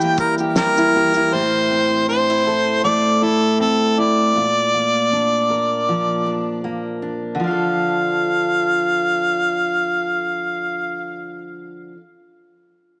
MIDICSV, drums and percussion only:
0, 0, Header, 1, 2, 480
1, 0, Start_track
1, 0, Key_signature, -1, "minor"
1, 0, Tempo, 761421
1, 828, Time_signature, 4, 2, 24, 8
1, 8195, End_track
2, 0, Start_track
2, 0, Title_t, "Drums"
2, 7, Note_on_c, 9, 82, 59
2, 70, Note_off_c, 9, 82, 0
2, 111, Note_on_c, 9, 82, 52
2, 113, Note_on_c, 9, 36, 93
2, 174, Note_off_c, 9, 82, 0
2, 176, Note_off_c, 9, 36, 0
2, 240, Note_on_c, 9, 82, 48
2, 303, Note_off_c, 9, 82, 0
2, 351, Note_on_c, 9, 38, 108
2, 354, Note_on_c, 9, 82, 84
2, 414, Note_off_c, 9, 38, 0
2, 417, Note_off_c, 9, 82, 0
2, 489, Note_on_c, 9, 82, 63
2, 552, Note_off_c, 9, 82, 0
2, 719, Note_on_c, 9, 82, 50
2, 782, Note_off_c, 9, 82, 0
2, 8195, End_track
0, 0, End_of_file